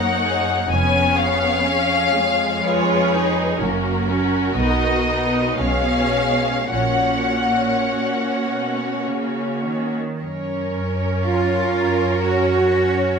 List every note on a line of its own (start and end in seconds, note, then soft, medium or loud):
0.00 0.67 F#2 soft
0.00 0.71 A#3 soft
0.00 0.71 D#4 soft
0.00 0.21 A#4 soft
0.00 0.70 C#5 soft
0.00 0.72 F#5 soft
0.23 0.70 G#4 soft
0.70 1.62 F1 soft
0.70 3.55 F2 soft
0.70 1.65 B3 soft
0.70 1.64 C#4 soft
0.70 2.61 G#4 soft
0.70 2.61 C#5 soft
0.70 1.18 G#5 medium
1.18 2.64 F5 medium
1.66 2.15 C#4 soft
2.16 3.60 G#3 soft
2.65 3.11 F4 soft
2.65 3.58 G#4 medium
2.65 3.58 B4 medium
2.65 3.61 C#5 medium
3.12 3.60 D#4 soft
3.59 4.52 F#1 soft
3.59 4.54 F#2 soft
3.59 4.06 A#3 soft
3.59 4.07 C#4 soft
3.59 5.57 F#4 soft
3.59 5.53 A#4 soft
4.08 4.56 C#4 soft
4.56 5.54 B1 soft
4.56 5.56 B2 soft
4.56 5.56 B3 soft
4.56 5.05 D#4 soft
4.56 5.54 D#5 medium
5.07 5.57 D#4 soft
5.57 6.67 B1 soft
5.57 6.69 B2 soft
5.57 6.12 G#3 soft
5.57 6.69 C#4 soft
5.57 6.71 G#4 soft
5.57 6.71 C#5 soft
5.57 6.72 F5 medium
6.13 6.70 G#3 soft
6.71 7.85 A#1 soft
6.71 7.75 A#2 soft
6.71 9.95 A#3 soft
6.71 9.95 C#4 soft
6.71 9.96 F#4 soft
6.71 9.96 C#5 soft
6.71 9.03 F#5 medium
7.90 8.44 A#2 soft
8.48 9.06 B2 soft
9.07 9.65 C#3 soft
9.65 10.20 D#3 soft
10.20 13.19 F#2 soft
10.20 13.19 C#4 soft
10.20 13.19 A#4 soft
10.20 13.19 C#5 soft
11.24 12.20 F4 medium
12.24 13.19 F#4 medium